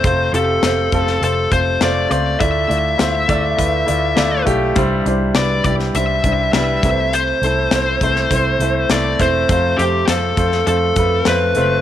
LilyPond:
<<
  \new Staff \with { instrumentName = "Lead electric guitar" } { \time 4/4 \key f \lydian \tempo 4 = 102 c''8 a'4. a'8 c''8 d''8 d''8 | e''2.~ e''8 r8 | r4 d''8 d''8 e''4 e''4 | c''2. d''8 c''8~ |
c''8 g'8 a'4 a'4 b'4 | }
  \new Staff \with { instrumentName = "Grand piano" } { \time 4/4 \key f \lydian <a c' f' c''>8 <a c' f' g'>8 <a c' f' c''>8 <a c' f' a'>8 <a c' f' c''>8 <a c' f' c''>8 <a c' f' c''>8 <a c' f' c''>8 | <a e' f' d''>8 <a e' f' d''>8 <a e' f' c''>8 <a e' f' d''>8 <a e' f' b'>8 <a e' f' d''>8 <a e' f' d''>8 <a e' f' g'>8 | <g d' e' c''>8 <g d' e' c''>8 <g d' e' b'>8 <g d' e' g'>8 <g d' e' c''>8 <g d' e' c''>8 <g d' e' b'>8 <a c' e' b' c''>8~ | <a c' e' b' c''>8 <a c' e' a'>8 <a c' e' c''>8 <a c' e' c''>8 <a c' e' c''>8 <a c' e' c''>8 <a c' e' c''>8 <a c' e' c''>8 |
<a c' f' c''>8 <a c' f' c''>8 <a c' f' c''>8 <a c' f' c''>8 <a c' f' c''>8 <a c' f' b'>8 <a c' f' c''>8 <a c' f' c''>8 | }
  \new Staff \with { instrumentName = "Grand piano" } { \clef bass \time 4/4 \key f \lydian c4. r2 r8 | a,4. r2 r8 | g,4. r2 c8~ | c4 r2. |
c4. r2 r8 | }
  \new Staff \with { instrumentName = "Picked electric bass" } { \clef bass \time 4/4 \key f \lydian f,,8 f,,8 f,,8 f,,8 f,,8 f,,8 f,,8 des,8 | d,8 d,8 d,8 d,8 d,8 d,8 d,8 b,,8 | c,8 c,8 c,8 c,8 c,8 c,8 c,8 c,8~ | c,8 c,8 c,8 c,8 c,8 c,8 c,8 e,,8 |
f,8 f,8 f,8 f,8 f,8 f,8 f,8 fis,,8 | }
  \new DrumStaff \with { instrumentName = "Drums" } \drummode { \time 4/4 <hh bd>8 hh8 <hh sn>8 <hh bd>16 sn16 hh8 <hh bd>8 <hh sn>8 hh8 | <hh bd>8 hh8 <hh sn>8 <hh bd>8 <hh bd>8 hh8 <hh sn>8 <hh bd>8 | <hh bd>8 hh8 <hh sn>8 <hh bd>16 sn16 hh8 <hh bd>8 <hh sn>8 <hh bd>8 | hh8 hh8 <hh sn>8 <hh bd>16 sn16 <hh bd>8 hh8 <hh sn>8 <hh bd>8 |
<hh bd>8 hh8 <hh sn>8 <hh bd>16 sn16 hh8 <hh bd>8 <hh sn>8 hh8 | }
>>